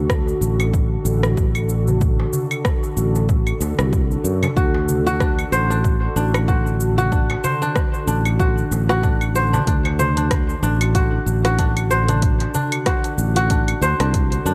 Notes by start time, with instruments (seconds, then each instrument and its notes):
Already playing: fretless electric bass D2, analog synth pad D3 D4 F#4 A4, singing bowl F#4
0.10 kick, cross-stick, shaker
0.27 darbuka ka, shaker
0.41 fretless electric bass A1, shaker
0.60 darbuka ka, claves, shaker
0.74 kick, shaker
1.05 fretless electric bass A1, shaker
1.23 cross-stick, shaker
1.37 kick, shaker
1.55 claves, shaker
1.69 shaker
1.88 darbuka dum, shaker
2.01 kick, shaker
2.20 darbuka tek
2.33 darbuka dum, shaker
2.51 claves, shaker
2.65 kick, cross-stick, shaker
2.83 darbuka ka, shaker
2.97 fretless electric bass A1, shaker
3.15 darbuka ka, shaker
3.29 kick, darbuka ka, shaker
3.47 claves, shaker
3.61 fretless electric bass D2, darbuka tek, shaker
3.79 fretless electric bass C2, cross-stick, darbuka ka, shaker
3.93 kick, shaker
4.11 shaker
4.24 fretless electric bass F#2, shaker
4.43 darbuka tek, darbuka dum, claves, shaker
4.56 fretless electric bass D2, kora F#4, kick, shaker
4.74 darbuka tek
4.89 darbuka dum, shaker
5.06 kora F#4, shaker
5.20 kora D4, kick, cross-stick, shaker
5.39 darbuka ka, claves, shaker
5.52 fretless electric bass A1, kora C5, shaker
5.70 kora D4, darbuka ka, shaker
5.84 kick, shaker
6.16 fretless electric bass A1, kora D4, shaker
6.34 cross-stick, claves, shaker
6.48 kora F#4, kick, shaker
6.67 shaker
6.80 shaker
6.98 kora F#4, darbuka dum, shaker
7.12 kora D4, kick, shaker
7.30 darbuka tek, claves
7.44 kora C5, darbuka dum, shaker
7.62 kora D4, shaker
7.76 kick, cross-stick, shaker
7.94 darbuka ka, shaker
8.07 fretless electric bass A1, kora D4, shaker
8.25 darbuka ka, claves, shaker
8.39 kora F#4, kick, darbuka ka, shaker
8.58 shaker
8.71 fretless electric bass A1, darbuka tek, shaker
8.89 kora F#4, cross-stick, darbuka ka, shaker
9.03 kora D4, kick, shaker
9.21 claves, shaker
9.35 kora C5, shaker
9.53 kora D4, darbuka tek, darbuka dum, shaker
9.67 fretless electric bass D2, kora D4, kick, closed hi-hat, shaker
9.85 darbuka tek, claves
9.99 kora C5, darbuka dum, shaker
10.17 kora D4, closed hi-hat, shaker
10.31 kick, cross-stick, closed hi-hat, shaker
10.49 darbuka ka, shaker
10.63 fretless electric bass A1, kora D4, shaker
10.81 closed hi-hat, darbuka ka, claves, shaker
10.95 kora F#4, kick, closed hi-hat, shaker
11.26 fretless electric bass A1, shaker
11.45 kora F#4, cross-stick, closed hi-hat, shaker
11.58 kora D4, kick, closed hi-hat, shaker
11.77 closed hi-hat, claves, shaker
11.91 kora C5, shaker
12.08 kora D4, closed hi-hat, darbuka dum, shaker
12.22 kick, closed hi-hat, shaker
12.40 closed hi-hat, darbuka tek
12.54 kora D4, darbuka dum, shaker
12.72 closed hi-hat, claves, shaker
12.86 kora F#4, kick, cross-stick, closed hi-hat, shaker
13.04 closed hi-hat, darbuka ka, shaker
13.18 fretless electric bass A1, shaker
13.36 kora F#4, closed hi-hat, darbuka ka, shaker
13.50 kora D4, kick, closed hi-hat, darbuka ka, shaker
13.68 closed hi-hat, claves, shaker
13.81 fretless electric bass D2, kora C5, darbuka tek, shaker
14.00 fretless electric bass C2, kora D4, cross-stick, closed hi-hat, darbuka ka, shaker
14.14 kick, closed hi-hat, shaker
14.32 closed hi-hat, shaker
14.46 fretless electric bass F#2, kora D4, shaker